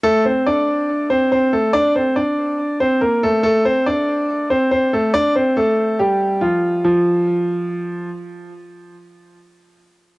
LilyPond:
\new Staff \with { instrumentName = "Grand piano" } { \time 4/4 \key d \minor \tempo 4 = 141 <a a'>8 <c' c''>8 <d' d''>4. <c' c''>8 <c' c''>8 <a a'>8 | <d' d''>8 <c' c''>8 <d' d''>4. <c' c''>8 <bes bes'>8 <a a'>8 | <a a'>8 <c' c''>8 <d' d''>4. <c' c''>8 <c' c''>8 <a a'>8 | <d' d''>8 <c' c''>8 <a a'>4 <g g'>4 <f f'>4 |
f2. r4 | r1 | }